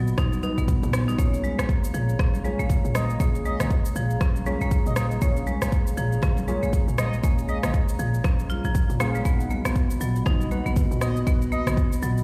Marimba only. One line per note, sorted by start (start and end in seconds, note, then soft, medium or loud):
0.18 0.31 D#4 medium
0.43 0.57 D#4 medium
0.58 0.68 B3 medium
0.93 1.07 B3 medium
1.08 1.14 D#4 medium
1.18 1.33 A#3 medium
1.44 1.58 G#3 medium
1.59 1.68 A#3 medium
1.94 2.08 F3 medium
2.19 2.33 C#4 medium
2.45 2.59 G#3 medium
2.60 2.69 A#3 medium
2.95 3.03 A#3 medium
3.20 3.34 A#3 medium
3.45 3.60 G#3 medium
3.60 3.70 A#3 medium
3.96 4.09 F3 medium
4.21 4.35 C#4 medium
4.46 4.60 G#3 medium
4.61 4.70 A#3 medium
4.97 5.05 A#3 medium
5.22 5.36 A#3 medium
5.47 5.61 G#3 medium
5.62 5.71 A#3 medium
5.97 6.11 F3 medium
6.23 6.36 C#4 medium
6.48 6.62 G#3 medium
6.63 6.72 A#3 medium
6.98 7.06 A#3 medium
7.24 7.38 A#3 medium
7.49 7.63 G#3 medium
7.64 7.73 A#3 medium
7.99 8.13 F3 medium
8.25 8.38 C#4 medium
8.50 8.63 F4 medium
8.65 8.70 F3 medium
9.00 9.08 A#3 loud
9.15 9.24 G#3 medium
9.25 9.39 B3 medium
9.51 9.65 A#3 medium
9.65 9.75 B3 medium
10.01 10.14 F#3 medium
10.26 10.34 D#4 medium
10.51 10.65 A#3 medium
10.66 10.75 B3 medium
11.02 11.10 B3 medium
11.27 11.41 B3 medium
11.52 11.66 A#3 medium
11.67 11.76 B3 medium
12.03 12.16 F#3 medium